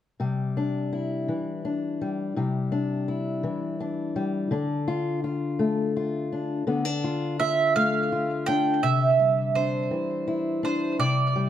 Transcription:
0, 0, Header, 1, 3, 480
1, 0, Start_track
1, 0, Key_signature, 0, "major"
1, 0, Tempo, 720288
1, 131, Time_signature, 6, 3, 24, 8
1, 7660, End_track
2, 0, Start_track
2, 0, Title_t, "Mandolin"
2, 0, Program_c, 0, 25
2, 4929, Note_on_c, 0, 76, 73
2, 5166, Note_off_c, 0, 76, 0
2, 5169, Note_on_c, 0, 77, 67
2, 5637, Note_off_c, 0, 77, 0
2, 5640, Note_on_c, 0, 79, 86
2, 5884, Note_on_c, 0, 76, 75
2, 5890, Note_off_c, 0, 79, 0
2, 6364, Note_off_c, 0, 76, 0
2, 6366, Note_on_c, 0, 72, 61
2, 7087, Note_off_c, 0, 72, 0
2, 7095, Note_on_c, 0, 72, 65
2, 7325, Note_off_c, 0, 72, 0
2, 7328, Note_on_c, 0, 74, 75
2, 7660, Note_off_c, 0, 74, 0
2, 7660, End_track
3, 0, Start_track
3, 0, Title_t, "Steel-string acoustic guitar"
3, 0, Program_c, 1, 25
3, 131, Note_on_c, 1, 48, 47
3, 137, Note_on_c, 1, 55, 46
3, 379, Note_on_c, 1, 62, 43
3, 617, Note_on_c, 1, 64, 40
3, 850, Note_off_c, 1, 48, 0
3, 855, Note_on_c, 1, 52, 47
3, 1096, Note_off_c, 1, 62, 0
3, 1098, Note_on_c, 1, 62, 39
3, 1332, Note_off_c, 1, 55, 0
3, 1343, Note_on_c, 1, 55, 43
3, 1543, Note_off_c, 1, 52, 0
3, 1572, Note_off_c, 1, 55, 0
3, 1575, Note_on_c, 1, 48, 50
3, 1580, Note_on_c, 1, 55, 43
3, 1595, Note_off_c, 1, 62, 0
3, 1811, Note_on_c, 1, 62, 50
3, 2045, Note_off_c, 1, 64, 0
3, 2053, Note_on_c, 1, 64, 41
3, 2288, Note_on_c, 1, 52, 45
3, 2291, Note_off_c, 1, 48, 0
3, 2532, Note_off_c, 1, 62, 0
3, 2535, Note_on_c, 1, 62, 41
3, 2763, Note_off_c, 1, 55, 0
3, 2771, Note_on_c, 1, 55, 44
3, 2978, Note_off_c, 1, 52, 0
3, 3004, Note_on_c, 1, 50, 55
3, 3007, Note_off_c, 1, 62, 0
3, 3009, Note_off_c, 1, 55, 0
3, 3009, Note_off_c, 1, 64, 0
3, 3010, Note_on_c, 1, 62, 46
3, 3250, Note_on_c, 1, 65, 56
3, 3489, Note_off_c, 1, 65, 0
3, 3491, Note_on_c, 1, 65, 42
3, 3727, Note_on_c, 1, 57, 46
3, 3968, Note_off_c, 1, 65, 0
3, 3975, Note_on_c, 1, 65, 47
3, 4212, Note_off_c, 1, 62, 0
3, 4215, Note_on_c, 1, 62, 44
3, 4417, Note_off_c, 1, 57, 0
3, 4421, Note_off_c, 1, 65, 0
3, 4435, Note_off_c, 1, 50, 0
3, 4443, Note_on_c, 1, 50, 49
3, 4444, Note_off_c, 1, 62, 0
3, 4447, Note_on_c, 1, 59, 47
3, 4564, Note_off_c, 1, 59, 0
3, 4564, Note_on_c, 1, 62, 41
3, 4692, Note_on_c, 1, 65, 54
3, 4924, Note_off_c, 1, 65, 0
3, 4932, Note_on_c, 1, 65, 46
3, 5170, Note_on_c, 1, 57, 49
3, 5404, Note_off_c, 1, 65, 0
3, 5412, Note_on_c, 1, 65, 47
3, 5645, Note_off_c, 1, 62, 0
3, 5653, Note_on_c, 1, 62, 50
3, 5859, Note_off_c, 1, 57, 0
3, 5860, Note_off_c, 1, 62, 0
3, 5860, Note_off_c, 1, 65, 0
3, 5886, Note_on_c, 1, 48, 50
3, 6127, Note_on_c, 1, 55, 48
3, 6371, Note_on_c, 1, 62, 39
3, 6601, Note_off_c, 1, 50, 0
3, 6603, Note_on_c, 1, 52, 43
3, 6606, Note_off_c, 1, 48, 0
3, 6847, Note_on_c, 1, 64, 46
3, 7082, Note_off_c, 1, 62, 0
3, 7084, Note_on_c, 1, 62, 49
3, 7296, Note_off_c, 1, 52, 0
3, 7324, Note_on_c, 1, 48, 49
3, 7344, Note_off_c, 1, 62, 0
3, 7561, Note_off_c, 1, 55, 0
3, 7569, Note_on_c, 1, 55, 48
3, 7660, Note_off_c, 1, 48, 0
3, 7660, Note_off_c, 1, 55, 0
3, 7660, Note_off_c, 1, 64, 0
3, 7660, End_track
0, 0, End_of_file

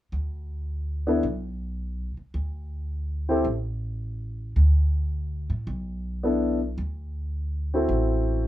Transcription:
0, 0, Header, 1, 4, 480
1, 0, Start_track
1, 0, Tempo, 554529
1, 113, Time_signature, 4, 2, 24, 8
1, 7336, End_track
2, 0, Start_track
2, 0, Title_t, "Upright piano"
2, 0, Program_c, 0, 0
2, 924, Note_on_c, 0, 59, 58
2, 924, Note_on_c, 0, 62, 49
2, 934, Note_on_c, 0, 64, 50
2, 937, Note_on_c, 0, 69, 59
2, 1058, Note_off_c, 0, 59, 0
2, 1058, Note_off_c, 0, 62, 0
2, 1063, Note_off_c, 0, 64, 0
2, 1065, Note_off_c, 0, 69, 0
2, 2845, Note_on_c, 0, 60, 57
2, 2845, Note_on_c, 0, 64, 52
2, 2853, Note_on_c, 0, 67, 53
2, 2863, Note_on_c, 0, 69, 63
2, 2979, Note_off_c, 0, 60, 0
2, 2979, Note_off_c, 0, 64, 0
2, 2983, Note_off_c, 0, 67, 0
2, 2988, Note_off_c, 0, 69, 0
2, 5395, Note_on_c, 0, 59, 47
2, 5398, Note_on_c, 0, 62, 43
2, 5403, Note_on_c, 0, 64, 43
2, 5410, Note_on_c, 0, 69, 52
2, 5693, Note_off_c, 0, 59, 0
2, 5695, Note_off_c, 0, 62, 0
2, 5697, Note_off_c, 0, 64, 0
2, 5701, Note_off_c, 0, 69, 0
2, 6697, Note_on_c, 0, 60, 55
2, 6701, Note_on_c, 0, 64, 49
2, 6708, Note_on_c, 0, 66, 50
2, 6714, Note_on_c, 0, 69, 57
2, 7289, Note_off_c, 0, 60, 0
2, 7291, Note_off_c, 0, 64, 0
2, 7295, Note_off_c, 0, 66, 0
2, 7298, Note_off_c, 0, 69, 0
2, 7336, End_track
3, 0, Start_track
3, 0, Title_t, "Upright bass"
3, 0, Program_c, 1, 32
3, 106, Note_on_c, 1, 38, 65
3, 1035, Note_off_c, 1, 38, 0
3, 1066, Note_on_c, 1, 35, 71
3, 1846, Note_off_c, 1, 35, 0
3, 2026, Note_on_c, 1, 38, 69
3, 2956, Note_off_c, 1, 38, 0
3, 2982, Note_on_c, 1, 33, 75
3, 3914, Note_off_c, 1, 33, 0
3, 3948, Note_on_c, 1, 38, 73
3, 4728, Note_off_c, 1, 38, 0
3, 4759, Note_on_c, 1, 45, 66
3, 4901, Note_off_c, 1, 45, 0
3, 4907, Note_on_c, 1, 35, 73
3, 5837, Note_off_c, 1, 35, 0
3, 5866, Note_on_c, 1, 38, 70
3, 6795, Note_off_c, 1, 38, 0
3, 6827, Note_on_c, 1, 33, 74
3, 7336, Note_off_c, 1, 33, 0
3, 7336, End_track
4, 0, Start_track
4, 0, Title_t, "Muted upright bass strokes"
4, 1880, Note_on_c, 9, 29, 34
4, 1966, Note_off_c, 9, 29, 0
4, 7336, End_track
0, 0, End_of_file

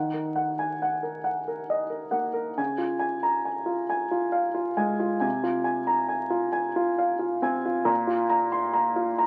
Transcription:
0, 0, Header, 1, 2, 480
1, 0, Start_track
1, 0, Tempo, 886263
1, 1403, Time_signature, 6, 3, 24, 8
1, 5020, End_track
2, 0, Start_track
2, 0, Title_t, "Grand piano"
2, 0, Program_c, 0, 0
2, 0, Note_on_c, 0, 51, 43
2, 0, Note_on_c, 0, 78, 39
2, 45, Control_c, 0, 64, 127
2, 74, Note_on_c, 0, 70, 34
2, 148, Note_off_c, 0, 78, 0
2, 192, Note_on_c, 0, 78, 37
2, 274, Note_off_c, 0, 70, 0
2, 319, Note_on_c, 0, 80, 41
2, 393, Note_off_c, 0, 78, 0
2, 443, Note_off_c, 0, 80, 0
2, 444, Note_on_c, 0, 78, 37
2, 557, Note_on_c, 0, 70, 36
2, 638, Note_off_c, 0, 78, 0
2, 672, Note_on_c, 0, 78, 38
2, 754, Note_off_c, 0, 70, 0
2, 800, Note_on_c, 0, 70, 39
2, 870, Note_off_c, 0, 78, 0
2, 920, Note_on_c, 0, 75, 41
2, 994, Note_off_c, 0, 70, 0
2, 1028, Note_on_c, 0, 70, 37
2, 1113, Note_off_c, 0, 75, 0
2, 1143, Note_on_c, 0, 78, 39
2, 1146, Note_on_c, 0, 58, 36
2, 1227, Note_off_c, 0, 70, 0
2, 1265, Note_on_c, 0, 70, 41
2, 1345, Note_off_c, 0, 78, 0
2, 1373, Note_off_c, 0, 51, 0
2, 1394, Note_off_c, 0, 58, 0
2, 1394, Note_off_c, 0, 70, 0
2, 1396, Note_on_c, 0, 49, 47
2, 1396, Note_on_c, 0, 80, 42
2, 1412, Control_c, 0, 64, 0
2, 1489, Control_c, 0, 64, 127
2, 1506, Note_on_c, 0, 65, 36
2, 1592, Note_off_c, 0, 80, 0
2, 1622, Note_on_c, 0, 80, 44
2, 1707, Note_off_c, 0, 65, 0
2, 1749, Note_on_c, 0, 82, 42
2, 1825, Note_off_c, 0, 80, 0
2, 1870, Note_on_c, 0, 80, 38
2, 1876, Note_off_c, 0, 82, 0
2, 1981, Note_on_c, 0, 65, 37
2, 2069, Note_off_c, 0, 80, 0
2, 2109, Note_on_c, 0, 80, 41
2, 2184, Note_off_c, 0, 65, 0
2, 2228, Note_on_c, 0, 65, 41
2, 2308, Note_off_c, 0, 80, 0
2, 2340, Note_on_c, 0, 77, 43
2, 2427, Note_off_c, 0, 65, 0
2, 2461, Note_on_c, 0, 65, 42
2, 2544, Note_off_c, 0, 77, 0
2, 2583, Note_on_c, 0, 56, 39
2, 2583, Note_on_c, 0, 80, 44
2, 2664, Note_off_c, 0, 65, 0
2, 2706, Note_on_c, 0, 65, 41
2, 2785, Note_off_c, 0, 80, 0
2, 2817, Note_off_c, 0, 49, 0
2, 2818, Note_on_c, 0, 80, 47
2, 2823, Note_on_c, 0, 48, 50
2, 2832, Note_off_c, 0, 56, 0
2, 2834, Note_off_c, 0, 65, 0
2, 2851, Control_c, 0, 64, 0
2, 2938, Control_c, 0, 64, 127
2, 2943, Note_on_c, 0, 65, 42
2, 3020, Note_off_c, 0, 80, 0
2, 3056, Note_on_c, 0, 80, 44
2, 3141, Note_off_c, 0, 65, 0
2, 3179, Note_on_c, 0, 82, 44
2, 3256, Note_off_c, 0, 80, 0
2, 3296, Note_on_c, 0, 80, 42
2, 3306, Note_off_c, 0, 82, 0
2, 3413, Note_on_c, 0, 65, 45
2, 3495, Note_off_c, 0, 80, 0
2, 3534, Note_on_c, 0, 80, 45
2, 3614, Note_off_c, 0, 65, 0
2, 3661, Note_on_c, 0, 65, 47
2, 3735, Note_off_c, 0, 80, 0
2, 3783, Note_on_c, 0, 77, 46
2, 3860, Note_off_c, 0, 65, 0
2, 3895, Note_on_c, 0, 65, 42
2, 3981, Note_off_c, 0, 77, 0
2, 4020, Note_on_c, 0, 60, 44
2, 4024, Note_on_c, 0, 80, 47
2, 4097, Note_off_c, 0, 65, 0
2, 4146, Note_on_c, 0, 65, 47
2, 4223, Note_off_c, 0, 80, 0
2, 4245, Note_off_c, 0, 48, 0
2, 4251, Note_on_c, 0, 46, 58
2, 4252, Note_on_c, 0, 82, 50
2, 4269, Note_off_c, 0, 60, 0
2, 4272, Note_off_c, 0, 65, 0
2, 4286, Control_c, 0, 64, 0
2, 4372, Note_on_c, 0, 65, 45
2, 4375, Control_c, 0, 64, 127
2, 4458, Note_off_c, 0, 82, 0
2, 4492, Note_on_c, 0, 82, 52
2, 4579, Note_off_c, 0, 65, 0
2, 4615, Note_on_c, 0, 84, 46
2, 4699, Note_off_c, 0, 82, 0
2, 4730, Note_on_c, 0, 82, 47
2, 4748, Note_off_c, 0, 84, 0
2, 4853, Note_on_c, 0, 65, 45
2, 4936, Note_off_c, 0, 82, 0
2, 4974, Note_on_c, 0, 82, 52
2, 5020, Note_off_c, 0, 46, 0
2, 5020, Note_off_c, 0, 65, 0
2, 5020, Note_off_c, 0, 82, 0
2, 5020, End_track
0, 0, End_of_file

